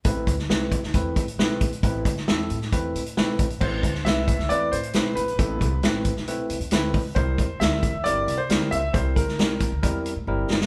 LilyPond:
<<
  \new Staff \with { instrumentName = "Grand piano" } { \time 4/4 \key a \minor \tempo 4 = 135 r1 | r1 | c''4 e''4 d''8 c''4 b'8~ | b'4. r2 r8 |
c''4 e''4 d''8. c''8. e''8 | c''8 bes'2 r4. | }
  \new Staff \with { instrumentName = "Tine electric piano" } { \time 4/4 \key a \minor <a c' e' b'>8 r8 <a c' e' b'>8 r8 <a c' e' b'>8 r8 <a c' e' b'>8 r8 | <a c' e' b'>8 r8 <a c' e' a'>8 r8 <a c' e' b'>8 r8 <a c' e' b'>8 r8 | <a c' e' b'>8 r8 <a c' e' b'>8 r8 <a c' e' b'>8 r8 <a c' e' b'>8 r8 | <a c' e' a'>8 r8 <a c' e' b'>8 r8 <a c' e' b'>8 r8 <a c' e' b'>8 r8 |
<g c' e' bes'>8 r8 <g c' e' bes'>8 r8 <g c' e' bes'>8 r8 <g c' e' bes'>8 r8 | <g c' e' bes'>8 r8 <g c' e' bes'>8 r8 <g c' e' bes'>8 r8 <g c' e' bes'>8 r8 | }
  \new Staff \with { instrumentName = "Upright bass" } { \clef bass \time 4/4 \key a \minor a,,8 d,8 c,8. d,16 e,8 a,8 b,,8 bes,,8 | a,,8 d,8 e,8 a,8 e,8 a,8 b,,8 bes,,8 | a,,8 d,8 c,8. d,16 e,8 a,8 b,,8 bes,,8 | a,,8 c,8 a,,8. b,,8 r16 c,16 f,16 d,8 cis,8 |
c,8 e,8 d,8. e,16 g,,8 c8 d,8 cis,8 | c,8 d,8 c,8. d,16 e,8. a,16 g,,8 fis,,8 | }
  \new DrumStaff \with { instrumentName = "Drums" } \drummode { \time 4/4 <hh bd>8 <hh bd>16 sn16 sn8 <hh bd>16 sn16 <hh bd>8 <hh bd>16 hh16 sn8 <hh bd>16 hh16 | <hh bd>8 <hh bd>16 sn16 sn8 hh16 sn16 <hh bd>8 hh16 hh16 sn8 <hh bd>16 hh16 | <cymc bd>8 <hh bd>16 sn16 <hh sn>8 <hh bd>16 sn16 hh8 hh16 hh16 <hh sn>8 hh16 hh16 | <hh bd>8 <hh bd>8 <hh sn>8 <hh bd>16 sn16 hh8 hh16 hh16 <hh sn>8 <hho bd>8 |
<hh bd>8 <hh bd>8 <hh sn>8 <hh bd>8 hh8 hh8 <hh sn>8 hh8 | <hh bd>8 <hh bd>16 sn16 <hh sn>8 <hh bd>8 <hh bd>8 hh8 r8 sn16 sn16 | }
>>